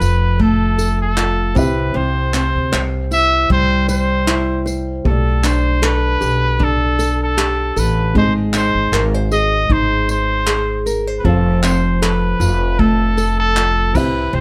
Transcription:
Already playing: F3 C4 F4 A4 B4 F5
0.00 F1 F4, tambourine
0.39 A3 A4, kick
0.78 A4, tambourine
1.02 A4
1.17 F4, clap
1.54 C2 C3 C4 E4 G4 B4, kick, tambourine
1.59 E5
1.94 C2 C3 C5
2.34 C4 C5, clap, tambourine
2.55 D2
2.72 C2 C5, clap
3.11 E4 E5, tambourine
3.50 C2 G3 C5, kick
3.88 C5, tambourine
4.27 E4, clap
4.66 C5, tambourine
5.04 B1 A3 G4 A4, kick
5.09 D5
5.44 D4 C5, clap, tambourine
5.82 A4 B4, clap
6.21 B1 G4, tambourine
6.59 D4, kick
6.64 A4
6.99 A4, tambourine
7.24 A4
7.37 G4, clap
7.76 A1 A4 B4, tambourine
8.13 G#1 G#3 C4 D#4 G#4, kick
8.17 C5 D#5
8.53 D#4 C5, clap, tambourine
8.75 G#1
8.92 G#1 A#4, clap
9.14 C5
9.31 G#4 D#5, tambourine
9.70 G#1 D#4 C5, kick
10.09 C5, tambourine
10.47 G#4, clap
10.86 A#4, tambourine
11.07 C5
11.19 B4
11.23 F1 F3 C4 F4 A4, kick
11.27 F5
11.63 C4 C5, clap, tambourine
12.02 A4 B4, clap
12.40 F1 F4, tambourine
12.79 A3 A4, kick
13.17 A4, tambourine
13.40 A4
13.57 F4, clap
13.93 C2 C3 C4 E4 G4 B4, kick, tambourine, crash
13.97 E5
14.33 C2 C3 C5

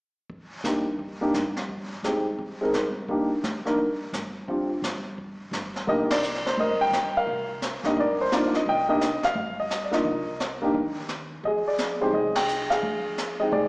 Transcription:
0.30 brush sweep, kick
0.64 G1 A#3 D4 D#4 G4, snare, hi-hat pedal
0.99 brush sweep, kick
1.21 A#3 D4 D#4 G4
1.34 G1, snare, hi-hat pedal
1.56 snare
1.69 brush sweep, kick
2.03 G1 G#3 C4 D#4 G4, snare, hi-hat pedal
2.38 brush sweep, kick
2.61 G#3 C4 D#4 A#4
2.73 G1, snare, hi-hat pedal
3.08 A#3 D4 D#4 G4, brush sweep, kick
3.43 G1, snare, hi-hat pedal
3.65 A#3 D4 D#4 A#4, snare
3.78 brush sweep, kick
4.13 G1, snare, hi-hat pedal
4.48 C4 D4 F4 G4, brush sweep, kick
4.82 G1, snare, hi-hat pedal
5.18 brush sweep, kick
5.51 G1, snare, hi-hat pedal
5.76 snare
5.87 C2 A#3 D4 D#4 G4 A#4 D#5, brush sweep, kick
6.10 D5, snare, ride
6.23 hi-hat pedal
6.35 snare
6.46 C5, snare
6.57 G1 A#4 D#5, brush sweep, kick
6.81 G5
6.91 G2, snare, hi-hat pedal
7.17 A#4 F5
7.27 C2, brush sweep, kick
7.62 snare, hi-hat pedal
7.83 B1 A#3 D4 D#4 G4 D#5, snare
7.96 G1 A#4, brush sweep, kick
8.00 D5
8.21 C5
8.32 A#3 D4 D#4 F4 D5, snare, hi-hat pedal
8.54 D#5, snare
8.66 C2 D#5 G5, brush sweep, kick
8.89 A#3 D4 D#4 G4 D#5
9.01 snare, hi-hat pedal
9.23 F5, muted upright bass stroke, snare
9.35 G1, brush sweep, kick
9.60 D#5
9.70 snare, hi-hat pedal
9.84 D5
9.91 A#3 D4 D#4 F4 A#4 D#5, snare
10.05 C2, brush sweep, kick
10.40 snare, hi-hat pedal
10.62 A#3 D4 D#4 G4
10.74 D#2, brush sweep, kick
11.09 snare, hi-hat pedal
11.43 F2 G#4 D#5, brush sweep, kick
11.68 D5
11.78 snare, hi-hat pedal
12.01 G#3 C4 D#4 G4 C5
12.13 C2 G#4 D#5, brush sweep, kick
12.35 G5, snare, ride
12.48 hi-hat pedal
12.70 G#4 F5, snare
12.82 F2, brush sweep, kick
13.18 snare, hi-hat pedal
13.40 G#3 C4 D#4 D#5 G5
13.52 C2 G#4 D5, brush sweep, kick

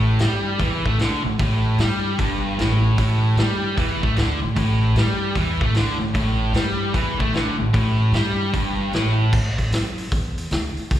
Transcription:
Already playing: A1 A2
0.19 G2 G3, snare, open hi-hat
0.58 E2 E3, kick, open hi-hat
0.85 A2 A3, kick
0.97 D2 D3, snare, open hi-hat
1.23 A1 A2
1.38 A1 A2, kick, open hi-hat
1.78 G2 G3, snare, open hi-hat
2.18 G1 G2, kick, open hi-hat
2.58 A1 A2, snare, open hi-hat
2.98 A1 A2, kick, open hi-hat
3.36 G2 G3, snare, open hi-hat
3.76 E2 E3, kick, open hi-hat
4.02 A2 A3, kick
4.16 D2 D3, snare, open hi-hat
4.42 A1 A2
4.56 A1 A2, kick, open hi-hat
4.95 G2 G3, snare, open hi-hat
5.35 E2 E3, kick, open hi-hat
5.61 A2 A3, kick
5.73 D2 D3, snare, open hi-hat
6.00 A1 A2
6.14 A1 A2, kick, open hi-hat
6.52 G2 G3, snare, open hi-hat
6.93 E2 E3, kick, open hi-hat
7.18 A2 A3, kick
7.33 D2 D3, snare, open hi-hat
7.58 A1 A2
7.73 A1 A2, kick, open hi-hat
8.12 G2 G3, snare, open hi-hat
8.53 G1 G2, kick, open hi-hat
8.92 A1 A2, snare, open hi-hat
9.33 A2, kick, crash
9.58 kick, open hi-hat
9.71 F#2, snare, open hi-hat
9.98 open hi-hat
10.12 E2, kick, open hi-hat
10.38 open hi-hat
10.51 D2, snare, open hi-hat
10.77 muted upright bass stroke, open hi-hat
10.91 C#2, kick, open hi-hat

